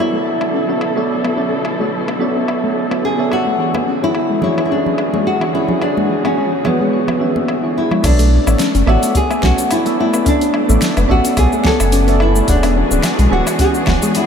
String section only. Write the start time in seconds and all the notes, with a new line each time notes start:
Already playing: B2 D3 F#3 E4 A4
3.59 E2 E3 F#4 G#4
8.04 A3 B3 D4
12.48 E3 G#3 F#4 G#4